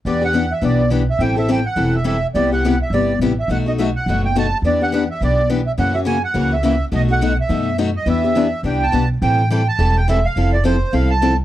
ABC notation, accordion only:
X:1
M:4/4
L:1/16
Q:"Swing" 1/4=210
K:Em
V:1 name="Accordion"
d2 f4 e2 d4 z2 e2 | g2 e2 g2 f4 e2 e3 z | d2 f4 e2 d4 z2 e2 | f2 ^d2 e2 f4 g2 a3 z |
d2 f4 e2 d4 z2 e2 | f2 e2 ^g2 f4 e2 e3 z | ^d2 f4 e6 z2 d2 | e8 g2 a4 z2 |
[K:Am] g4 g2 a4 g2 e2 f2- | f2 d2 c4 f2 a4 z2 |]